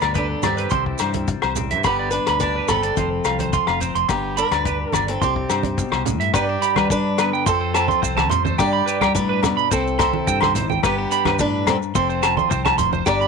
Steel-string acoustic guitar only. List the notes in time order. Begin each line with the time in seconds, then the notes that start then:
Already playing: D4 B4
0.18 D4 A4
0.46 C4 G4
1.86 B3 G4
2.11 D4 B4
2.40 D4 B4
2.68 C4 A4
4.09 B3 G4
4.38 D4 B4
4.93 A4
5.09 C4 A4
5.23 C4 G4
6.34 G4 D5
6.91 D4 B4
7.48 C4 A4
7.75 C4 A4
8.60 G4 D5
9.15 D4 B4
9.72 C4 A4
9.99 C4 A4
10.84 B3 G4
11.40 D4 B4
11.68 C4 A4
11.95 C4 A4
13.06 G4 D5